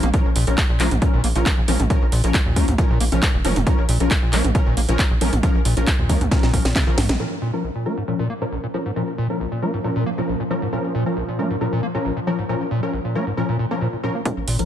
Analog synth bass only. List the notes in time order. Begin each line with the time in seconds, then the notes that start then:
0.03 A#1
0.25 A#1
0.36 A#1
0.47 A#1
0.69 A#1
0.80 A#1
0.91 A#1
1.13 G#1
1.24 A#1
1.36 A#1
1.58 A#1
1.68 A#1
1.80 A#1
2.02 A#1
2.12 A#1
2.24 A#1
2.46 D#2
2.56 D#2
2.68 D#2
2.90 A#1
3.00 A#1
3.12 A#1
3.34 F1
3.45 F1
3.56 F1
3.78 A#1
3.89 A#1
4.00 A#1
4.22 A#1
4.33 A#1
4.44 A#1
4.67 G#1
4.77 A#1
4.89 A#1
5.11 A#1
5.21 A#1
5.33 A#1
5.55 A#1
5.65 A#1
5.77 A#1
5.99 D#2
6.09 D#2
6.21 D#2
6.43 A#1
6.53 A#1
6.65 A#1
6.87 A#1
6.98 A#1
7.09 A#1
14.37 A#1
14.48 A#1
14.59 A#1